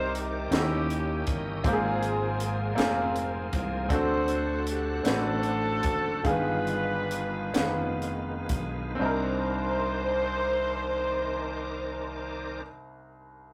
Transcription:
0.00 0.47 C2 medium
0.00 0.48 C3 medium
0.00 0.51 D#3 medium
0.00 0.51 C4 medium
0.00 0.53 C4 medium
0.00 0.48 D#4 medium
0.00 0.51 D#4 medium
0.00 0.17 G4 medium
0.00 0.51 A#4 medium
0.00 0.53 A#4 medium
0.00 0.12 C5 loud
0.00 0.51 D5 soft
0.00 0.53 D5 medium
0.15 0.54 G4 medium
0.15 closed hi-hat medium
0.51 1.22 D#2 medium
0.51 1.60 D#3 medium
0.51 1.65 D#3 medium
0.51 1.20 C#4 medium
0.51 1.65 C#4 soft
0.51 1.20 D#4 medium
0.51 1.20 E4 medium
0.51 0.59 E4 soft
0.51 0.59 F#4 medium
0.51 1.65 D#5 soft
0.51 snare loud
0.51 closed hi-hat medium
0.56 1.62 A#3 medium
0.56 1.62 C#4 medium
0.56 1.25 G4 medium
0.56 1.24 G4 medium
0.61 1.64 G4 medium
0.90 closed hi-hat soft
1.27 1.61 G1 medium
1.27 1.66 A#4 medium
1.27 kick medium
1.27 closed hi-hat medium
1.64 2.73 G#1 medium
1.64 2.73 G#2 medium
1.64 3.86 F3 medium
1.64 2.33 A#3 medium
1.64 3.86 A#3 medium
1.64 2.33 C4 medium
1.64 3.86 C4 medium
1.64 2.33 F4 medium
1.64 1.71 G4 soft
1.64 1.71 G4 medium
1.64 kick loud
1.64 closed hi-hat medium
1.69 2.75 C4 medium
1.69 2.75 F4 medium
1.69 2.79 G#4 medium
1.69 3.89 G#4 medium
1.69 2.37 G#4 medium
2.03 closed hi-hat soft
2.40 closed hi-hat medium
2.75 3.48 F1 medium
2.75 3.45 A#3 medium
2.75 3.45 C4 medium
2.75 3.46 F4 medium
2.75 3.46 G#4 medium
2.75 closed hi-hat medium
2.79 snare medium
3.16 closed hi-hat soft
3.53 3.90 C2 medium
3.53 kick medium
3.53 closed hi-hat medium
3.89 5.00 D2 loud
3.89 6.21 D3 medium
3.89 5.00 D3 medium
3.89 6.21 A3 soft
3.89 4.59 C4 medium
3.89 6.21 C4 medium
3.89 4.59 D4 medium
3.89 4.60 F#4 medium
3.89 4.60 A4 medium
3.89 6.21 F#5 medium
3.89 kick medium
3.89 closed hi-hat medium
3.94 5.02 F#4 medium
3.94 5.02 A4 medium
3.94 4.64 C5 medium
4.28 closed hi-hat soft
4.67 5.03 G4 medium
4.67 closed hi-hat medium
5.03 5.80 A1 medium
5.03 5.76 C4 medium
5.03 6.21 C4 medium
5.03 5.76 D4 medium
5.03 5.77 F#4 medium
5.03 5.78 B4 medium
5.03 snare loud
5.03 closed hi-hat medium
5.08 6.22 F#4 medium
5.08 6.27 A4 loud
5.43 closed hi-hat soft
5.83 6.22 F#1 medium
5.83 kick medium
5.83 closed hi-hat medium
6.23 7.50 G1 medium
6.23 7.51 G2 medium
6.23 7.02 D#3 medium
6.23 8.96 D#3 medium
6.23 6.31 G#3 medium
6.23 8.96 G#3 soft
6.23 6.32 A#3 soft
6.23 7.03 F4 medium
6.23 8.96 F4 medium
6.23 7.03 G#4 medium
6.23 kick medium
6.23 closed hi-hat medium
6.27 7.05 B3 medium
6.27 7.98 D4 medium
6.27 7.98 F4 medium
6.27 8.03 B4 medium
6.32 9.00 B3 soft
6.67 closed hi-hat soft
7.11 closed hi-hat medium
7.54 8.46 F1 medium
7.54 8.41 D#3 medium
7.54 8.40 B3 medium
7.54 8.41 F4 medium
7.54 8.42 B4 medium
7.54 snare medium
7.54 closed hi-hat medium
8.02 closed hi-hat soft
8.49 8.96 B1 medium
8.49 kick medium
8.49 closed hi-hat medium
8.95 12.55 C4 medium
8.95 12.59 D4 medium
9.00 12.60 C2 medium
9.00 12.61 D#3 medium
9.00 12.61 C4 medium
9.00 12.62 D#4 medium
9.00 12.62 A#4 medium
9.00 12.62 C5 medium
9.00 12.62 D5 medium
9.05 12.66 A#4 medium

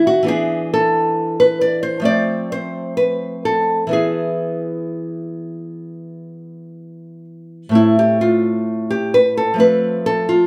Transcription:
0.00 0.22 D#3 medium
0.00 0.23 A3 medium
0.00 0.24 C4 soft
0.07 0.28 F#4 medium
0.23 1.99 E3 medium
0.23 2.00 B3 soft
0.23 2.01 D4 soft
0.28 0.71 G#4 medium
0.74 1.37 A4 medium
1.40 1.61 B4 medium
1.61 1.82 D5 medium
1.83 2.05 C5 medium
2.00 3.85 F3 medium
2.00 3.86 A3 soft
2.00 3.87 C4 soft
2.05 2.49 D5 medium
2.52 2.96 C5 medium
2.97 3.42 B4 medium
3.45 3.90 A4 medium
3.87 7.69 E3 soft
3.87 7.70 B3 soft
3.91 7.71 E4 soft
3.91 7.24 G#4 medium
7.69 9.53 A2 soft
7.69 9.55 A3 soft
7.73 9.56 C4 soft
7.73 7.98 E4 medium
7.99 8.21 G4 medium
8.21 8.88 F4 medium
8.90 9.14 G4 medium
9.14 9.37 B4 medium
9.37 9.59 A4 medium
9.54 10.47 F3 soft
9.54 10.47 A3 soft
9.58 10.47 C4 soft
9.58 10.05 B4 medium
10.06 10.29 A4 medium
10.29 10.47 F4 medium

